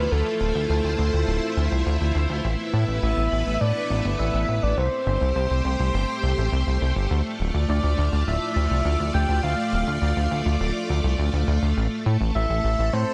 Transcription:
0.00 2.40 A3 medium
0.00 4.73 E4 medium
0.00 2.40 F4 medium
0.00 0.13 B4 medium
0.11 0.22 D2 loud
0.11 0.69 A4 loud
0.11 2.42 C5 loud
0.41 0.52 D1 loud
0.55 0.66 D2 medium
0.69 0.81 D2 loud
0.69 2.11 A4 medium
0.84 0.95 D2 medium
0.99 1.10 D2 loud
1.13 1.24 D2 medium
1.28 1.39 D1 loud
1.57 1.68 D2 medium
1.72 1.83 C2 medium
1.86 1.97 D2 loud
2.01 2.12 D2 medium
2.15 2.26 D2 loud
2.30 2.41 D2 medium
2.44 2.55 A1 loud
2.44 4.75 A3 medium
2.44 4.75 B3 medium
2.44 4.75 B4 medium
2.73 2.84 A2 medium
2.88 2.99 A1 medium
3.02 3.14 A1 loud
3.02 3.50 E5 loud
3.17 3.28 A1 medium
3.32 3.43 A1 loud
3.46 3.57 A1 medium
3.54 3.62 E5 medium
3.61 3.72 A2 loud
3.61 4.20 D5 loud
3.90 4.01 A1 loud
4.05 4.16 G1 medium
4.19 4.30 A1 loud
4.19 4.64 E5 loud
4.34 4.45 A1 medium
4.48 4.59 A1 medium
4.63 4.74 A1 medium
4.63 4.79 D5 loud
4.77 4.88 C2 loud
4.77 13.14 A3 medium
4.77 7.08 G4 medium
4.77 5.35 C5 loud
4.77 7.08 C5 loud
5.07 5.18 G1 loud
5.21 5.32 C2 medium
5.36 5.47 C2 loud
5.36 6.77 C5 medium
5.50 5.61 C2 medium
5.65 5.76 C2 loud
5.79 5.90 C2 medium
5.94 6.05 G1 loud
6.23 6.34 C2 medium
6.38 6.49 A1 medium
6.52 6.63 C2 loud
6.67 6.78 C2 medium
6.81 6.92 C2 loud
6.96 7.07 G1 medium
7.11 7.21 D2 loud
7.11 11.73 F4 medium
7.11 11.73 D5 medium
7.40 7.51 D1 medium
7.54 7.65 D2 medium
7.69 7.80 D2 loud
7.69 8.23 D5 medium
7.83 7.94 D2 medium
7.98 8.09 D2 loud
8.12 8.23 D2 medium
8.27 8.38 D1 loud
8.27 9.10 E5 loud
8.56 8.67 D2 medium
8.70 8.82 C2 medium
8.85 8.96 D2 loud
9.00 9.11 D2 medium
9.14 9.25 D2 loud
9.14 9.41 G5 loud
9.29 9.40 D2 medium
9.43 9.54 D2 loud
9.43 10.56 F5 loud
9.73 9.84 D1 loud
9.87 9.98 D2 medium
10.02 10.13 D2 loud
10.16 10.27 D2 medium
10.31 10.42 D2 loud
10.46 10.57 D2 medium
10.60 10.71 D1 loud
10.89 11.00 D2 medium
11.04 11.15 C2 medium
11.18 11.29 D2 loud
11.33 11.44 D2 medium
11.48 11.58 D2 loud
11.62 11.73 D2 medium
11.76 11.88 A1 loud
11.76 13.14 A4 medium
12.06 12.17 A2 medium
12.20 12.31 A1 medium
12.35 12.46 A1 loud
12.35 12.95 E5 loud
12.50 12.60 A1 medium
12.64 12.75 A1 loud
12.79 12.90 A1 medium
12.93 13.04 A2 loud
12.93 13.14 C5 loud

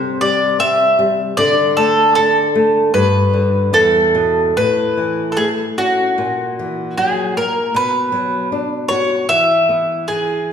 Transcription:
0.00 1.34 C3 medium
0.00 0.21 C5 medium
0.21 0.58 G3 medium
0.21 0.59 D5 medium
0.59 0.97 C4 medium
0.59 1.14 E5 loud
0.99 1.36 G3 medium
1.37 2.90 D3 medium
1.37 1.73 D5 loud
1.77 2.15 A3 medium
1.77 2.14 A4 medium
2.15 2.54 D4 medium
2.15 2.96 A4 medium
2.55 2.93 A3 medium
2.94 3.71 G2 medium
2.94 4.11 B4 medium
3.34 3.72 D3 soft
3.73 4.53 E2 medium
3.73 4.59 A4 medium
4.15 4.55 B2 medium
4.57 6.14 A2 medium
4.57 5.32 B4 medium
4.97 5.36 E3 soft
5.32 5.38 A4 medium
5.37 5.76 A3 medium
5.37 5.48 G#4 medium
5.78 6.17 C#4 medium
5.78 6.97 F#4 medium
6.18 7.70 A#2 medium
6.59 6.97 E3 soft
6.98 7.35 F#3 medium
6.98 7.33 G#4 medium
7.37 7.74 A#3 medium
7.37 7.76 A#4 medium
7.74 9.25 B2 medium
7.74 8.48 B4 medium
8.12 8.49 F#3 soft
8.52 8.89 D4 medium
8.89 9.28 F#4 medium
8.89 9.28 C#5 loud
9.29 10.08 E3 medium
9.29 10.11 E5 loud
9.69 10.08 B3 soft
10.08 10.49 E3 soft
10.08 10.53 G#4 medium

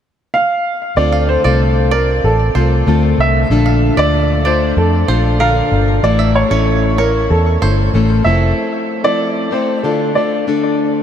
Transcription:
0.34 0.93 F5 loud
0.96 1.36 D2 medium
0.96 1.44 D3 medium
0.96 1.45 A3 medium
0.96 1.44 C4 medium
0.96 1.44 F4 medium
0.96 1.43 A4 medium
0.96 1.30 D5 medium
1.12 1.28 F5 medium
1.29 1.88 C5 medium
1.44 2.20 C2 medium
1.44 1.93 D3 soft
1.44 1.93 A3 medium
1.44 1.91 C4 medium
1.44 1.92 F4 medium
1.44 1.92 A4 medium
1.44 1.59 D5 medium
1.91 2.54 C4 medium
1.91 2.56 F4 medium
1.91 2.25 A#4 medium
1.91 2.22 D5 medium
2.24 2.50 A1 medium
2.24 3.22 A4 medium
2.54 2.81 C2 medium
2.54 2.86 A3 medium
2.54 2.87 C4 medium
2.54 2.87 F4 medium
2.54 2.87 A4 medium
2.54 2.85 C5 medium
2.87 3.13 D2 medium
2.87 3.50 D3 medium
2.87 3.50 A3 medium
2.87 3.51 C4 medium
2.87 3.51 F4 medium
2.87 3.51 A4 medium
3.18 3.44 C2 medium
3.18 4.01 E5 loud
3.50 3.89 A#1 loud
3.50 3.98 A#2 medium
3.50 3.97 D3 medium
3.50 3.97 A3 medium
3.50 3.97 D4 medium
3.50 3.96 F4 medium
3.50 3.96 A4 medium
3.66 3.81 F5 medium
3.97 4.73 D2 medium
3.97 4.46 A#2 medium
3.97 4.46 D3 medium
3.97 4.43 A3 medium
3.97 4.44 D4 medium
3.97 4.45 F4 medium
3.97 4.45 A4 medium
3.97 4.13 D5 medium
3.97 4.47 D5 loud
4.44 5.07 A3 medium
4.44 5.08 D4 medium
4.44 5.08 F4 medium
4.44 5.10 A4 medium
4.44 4.78 C5 medium
4.44 4.75 D5 medium
4.77 5.03 F2 medium
4.77 5.43 A4 medium
5.08 5.60 A#1 medium
5.08 5.40 A3 medium
5.08 5.39 D4 medium
5.08 5.40 F4 medium
5.08 5.40 A4 medium
5.08 5.39 C5 medium
5.39 6.03 A#2 medium
5.39 6.03 D3 medium
5.39 6.04 D4 medium
5.39 6.04 F4 medium
5.39 6.05 A4 medium
5.39 5.85 A#4 medium
5.39 6.05 F5 loud
5.72 5.98 G1 medium
6.03 6.42 A1 loud
6.03 6.51 A2 medium
6.03 6.50 E3 medium
6.03 6.50 A3 medium
6.03 6.49 E4 medium
6.03 6.49 A4 medium
6.03 6.36 D5 medium
6.19 6.34 E5 medium
6.35 7.01 C#5 medium
6.50 7.26 A1 medium
6.50 6.99 A2 medium
6.50 6.99 E3 soft
6.50 6.99 A3 medium
6.50 6.97 C#4 medium
6.50 6.98 E4 medium
6.50 6.98 A4 medium
6.50 6.66 C#5 medium
6.98 7.61 C#4 medium
6.98 7.62 E4 medium
6.98 7.31 A#4 medium
6.98 7.28 C#5 medium
7.30 7.56 E2 medium
7.30 8.28 A4 medium
7.61 7.88 G1 medium
7.61 7.93 A3 medium
7.61 7.94 C#4 medium
7.61 7.94 E4 medium
7.61 7.94 A4 medium
7.61 7.92 C5 medium
7.94 8.20 A1 medium
7.94 8.25 A2 medium
7.94 8.24 E3 medium
7.94 8.24 A3 medium
7.94 8.25 C#4 medium
7.94 8.25 E4 medium
7.94 8.25 A4 medium
8.24 8.51 F1 loud
8.24 9.06 F3 medium
8.24 9.05 A3 medium
8.24 9.04 C4 medium
8.24 9.03 E4 medium
8.24 9.04 A4 medium
8.24 9.06 E5 medium
9.04 9.53 F3 medium
9.04 9.50 A3 medium
9.04 9.51 C4 medium
9.04 9.52 E4 medium
9.04 9.52 A4 medium
9.04 9.53 D5 loud
9.51 9.83 A3 medium
9.51 9.83 C4 medium
9.51 9.84 E4 medium
9.51 9.84 A4 medium
9.51 9.85 C5 medium
9.83 10.15 D3 medium
9.83 10.14 A3 medium
9.83 10.15 D4 medium
9.83 10.16 F4 medium
9.83 10.16 A4 medium
10.15 10.46 A3 medium
10.15 10.47 D4 medium
10.15 10.47 F4 medium
10.15 10.47 A4 medium
10.15 10.74 D5 medium
10.47 11.03 D3 medium
10.47 11.03 A3 medium
10.47 11.03 D4 medium
10.47 11.03 F4 medium
10.47 11.03 A4 medium

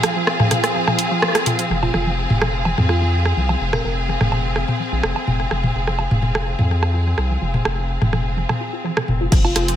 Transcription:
0.00 0.06 F3 medium
0.00 9.31 C4 medium
0.00 9.32 G#4 medium
0.00 9.32 F5 medium
0.00 cross-stick medium
0.00 open hi-hat medium
0.00 high woodblock medium
0.16 0.23 F3 medium
0.27 cross-stick medium
0.40 0.42 F3 medium
0.40 mid tom medium
0.51 0.58 F3 medium
0.51 cross-stick soft
0.51 open hi-hat medium
0.51 high tom medium
0.64 cross-stick medium
0.64 closed hi-hat soft
0.75 0.78 F3 medium
0.87 0.94 F3 medium
0.87 cross-stick soft
0.87 high tom soft
0.87 high woodblock medium
0.99 open hi-hat medium
1.11 1.14 F3 medium
1.22 1.30 F3 medium
1.22 cross-stick medium
1.35 cross-stick medium
1.35 closed hi-hat medium
1.46 1.49 F3 medium
1.46 open hi-hat medium
1.46 high tom medium
1.59 1.66 F3 medium
1.59 closed hi-hat soft
1.70 1.89 F1 loud
1.70 1.78 F3 medium
1.83 1.90 F4 medium
1.83 high tom soft
1.83 high woodblock medium
1.94 2.26 F1 medium
1.94 1.97 F3 medium
1.94 2.02 F4 medium
1.94 cross-stick soft
2.06 2.13 F3 medium
2.30 2.74 F1 medium
2.30 2.33 F3 medium
2.30 mid tom medium
2.42 2.49 F3 medium
2.42 cross-stick medium
2.42 high tom medium
2.65 2.68 F3 medium
2.65 high woodblock medium
2.78 3.33 F2 medium
2.78 2.85 F3 medium
2.78 mid tom medium
2.89 2.97 F4 medium
2.89 cross-stick soft
3.02 3.04 F3 medium
3.02 3.09 F4 medium
3.13 3.20 F3 medium
3.25 cross-stick soft
3.37 3.56 C2 medium
3.37 3.40 F3 medium
3.49 3.56 F3 medium
3.49 high woodblock medium
3.61 3.80 F1 medium
3.73 3.76 F3 medium
3.73 3.80 A#4 medium
3.73 cross-stick medium
3.73 high tom soft
3.84 4.17 F1 medium
3.84 3.92 F3 medium
3.84 3.92 A#4 medium
4.08 4.11 F3 medium
4.21 4.64 F1 medium
4.21 4.27 F3 medium
4.21 cross-stick soft
4.21 mid tom medium
4.32 high tom medium
4.32 high woodblock medium
4.45 4.47 F3 medium
4.56 4.63 F3 medium
4.56 cross-stick soft
4.68 high tom soft
4.80 4.83 F3 medium
4.92 5.01 A#1 medium
4.92 4.99 F3 medium
5.03 5.13 F1 medium
5.03 cross-stick medium
5.16 5.19 F3 medium
5.16 high woodblock medium
5.27 5.46 F1 loud
5.27 5.35 F3 medium
5.27 high tom medium
5.51 5.70 F1 medium
5.51 5.54 F3 medium
5.51 cross-stick soft
5.64 5.70 F3 medium
5.64 high tom medium
5.75 6.07 F1 medium
5.87 5.90 F3 medium
5.87 cross-stick soft
5.99 6.06 F3 medium
5.99 high woodblock medium
6.11 6.55 F1 medium
6.11 mid tom medium
6.22 6.25 F3 medium
6.22 high tom medium
6.35 6.42 F3 medium
6.35 cross-stick medium
6.59 7.14 F2 medium
6.59 6.62 F3 medium
6.59 mid tom medium
6.70 6.78 F3 medium
6.83 cross-stick soft
6.83 high woodblock medium
6.94 6.97 F3 medium
7.07 7.13 F3 medium
7.18 7.37 C2 medium
7.18 cross-stick soft
7.30 7.33 F3 medium
7.42 7.61 F1 medium
7.42 7.49 F3 medium
7.54 high tom soft
7.65 7.98 F1 medium
7.65 7.68 F3 medium
7.65 cross-stick medium
7.65 high woodblock medium
7.78 7.85 F3 medium
8.02 8.45 F1 medium
8.02 8.04 F3 medium
8.02 mid tom medium
8.13 8.20 F3 medium
8.13 cross-stick soft
8.13 high tom medium
8.37 8.40 F3 medium
8.49 8.56 F3 medium
8.49 cross-stick soft
8.49 high tom medium
8.49 high woodblock medium
8.61 8.64 F4 medium
8.73 8.80 F4 medium
8.84 8.89 F3 loud
8.97 9.04 C3 medium
8.97 cross-stick medium
9.08 9.27 F1 medium
9.08 9.13 F4 medium
9.08 high tom medium
9.21 9.25 F4 loud
9.32 9.51 F1 loud
9.32 9.39 F3 medium
9.32 9.76 C4 medium
9.32 kick loud
9.32 closed hi-hat medium
9.32 crash loud
9.45 9.52 F4 medium
9.45 high woodblock medium
9.56 9.76 F1 medium
9.56 9.59 F3 medium
9.56 9.64 F4 medium
9.56 9.76 G#4 medium
9.56 cross-stick soft
9.56 open hi-hat medium
9.68 9.75 F3 medium
9.68 closed hi-hat soft

